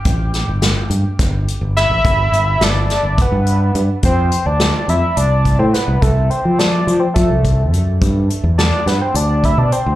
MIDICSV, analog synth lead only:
0, 0, Header, 1, 2, 480
1, 0, Start_track
1, 0, Tempo, 568720
1, 48, Time_signature, 7, 3, 24, 8
1, 8400, End_track
2, 0, Start_track
2, 0, Title_t, "Analog synth lead"
2, 0, Program_c, 0, 81
2, 1490, Note_on_c, 0, 76, 116
2, 1490, Note_on_c, 0, 83, 116
2, 2225, Note_on_c, 0, 74, 102
2, 2225, Note_on_c, 0, 81, 102
2, 2237, Note_off_c, 0, 76, 0
2, 2237, Note_off_c, 0, 83, 0
2, 2714, Note_on_c, 0, 71, 88
2, 2714, Note_on_c, 0, 78, 88
2, 2727, Note_off_c, 0, 74, 0
2, 2727, Note_off_c, 0, 81, 0
2, 3240, Note_off_c, 0, 71, 0
2, 3240, Note_off_c, 0, 78, 0
2, 3417, Note_on_c, 0, 72, 98
2, 3417, Note_on_c, 0, 79, 98
2, 3766, Note_on_c, 0, 74, 101
2, 3766, Note_on_c, 0, 81, 101
2, 3778, Note_off_c, 0, 72, 0
2, 3778, Note_off_c, 0, 79, 0
2, 4131, Note_on_c, 0, 76, 109
2, 4131, Note_on_c, 0, 83, 109
2, 4144, Note_off_c, 0, 74, 0
2, 4144, Note_off_c, 0, 81, 0
2, 4361, Note_on_c, 0, 74, 106
2, 4361, Note_on_c, 0, 81, 106
2, 4374, Note_off_c, 0, 76, 0
2, 4374, Note_off_c, 0, 83, 0
2, 4718, Note_on_c, 0, 72, 95
2, 4718, Note_on_c, 0, 79, 95
2, 4730, Note_off_c, 0, 74, 0
2, 4730, Note_off_c, 0, 81, 0
2, 4838, Note_on_c, 0, 71, 88
2, 4838, Note_on_c, 0, 78, 88
2, 4851, Note_off_c, 0, 72, 0
2, 4851, Note_off_c, 0, 79, 0
2, 5078, Note_on_c, 0, 69, 92
2, 5078, Note_on_c, 0, 76, 92
2, 5091, Note_off_c, 0, 71, 0
2, 5091, Note_off_c, 0, 78, 0
2, 5319, Note_on_c, 0, 72, 90
2, 5319, Note_on_c, 0, 79, 90
2, 5331, Note_off_c, 0, 69, 0
2, 5331, Note_off_c, 0, 76, 0
2, 5560, Note_on_c, 0, 74, 106
2, 5560, Note_on_c, 0, 81, 106
2, 5573, Note_off_c, 0, 72, 0
2, 5573, Note_off_c, 0, 79, 0
2, 5905, Note_on_c, 0, 72, 88
2, 5905, Note_on_c, 0, 79, 88
2, 5918, Note_off_c, 0, 74, 0
2, 5918, Note_off_c, 0, 81, 0
2, 6021, Note_off_c, 0, 72, 0
2, 6021, Note_off_c, 0, 79, 0
2, 6026, Note_on_c, 0, 69, 70
2, 6026, Note_on_c, 0, 76, 70
2, 6483, Note_off_c, 0, 69, 0
2, 6483, Note_off_c, 0, 76, 0
2, 7241, Note_on_c, 0, 74, 103
2, 7241, Note_on_c, 0, 81, 103
2, 7488, Note_on_c, 0, 71, 103
2, 7488, Note_on_c, 0, 78, 103
2, 7501, Note_off_c, 0, 74, 0
2, 7501, Note_off_c, 0, 81, 0
2, 7607, Note_on_c, 0, 72, 90
2, 7607, Note_on_c, 0, 79, 90
2, 7620, Note_off_c, 0, 71, 0
2, 7620, Note_off_c, 0, 78, 0
2, 7729, Note_on_c, 0, 74, 99
2, 7729, Note_on_c, 0, 81, 99
2, 7742, Note_off_c, 0, 72, 0
2, 7742, Note_off_c, 0, 79, 0
2, 7975, Note_on_c, 0, 76, 110
2, 7975, Note_on_c, 0, 83, 110
2, 7988, Note_off_c, 0, 74, 0
2, 7988, Note_off_c, 0, 81, 0
2, 8089, Note_on_c, 0, 74, 97
2, 8089, Note_on_c, 0, 81, 97
2, 8101, Note_off_c, 0, 76, 0
2, 8101, Note_off_c, 0, 83, 0
2, 8206, Note_on_c, 0, 72, 89
2, 8206, Note_on_c, 0, 79, 89
2, 8219, Note_off_c, 0, 74, 0
2, 8219, Note_off_c, 0, 81, 0
2, 8400, Note_off_c, 0, 72, 0
2, 8400, Note_off_c, 0, 79, 0
2, 8400, End_track
0, 0, End_of_file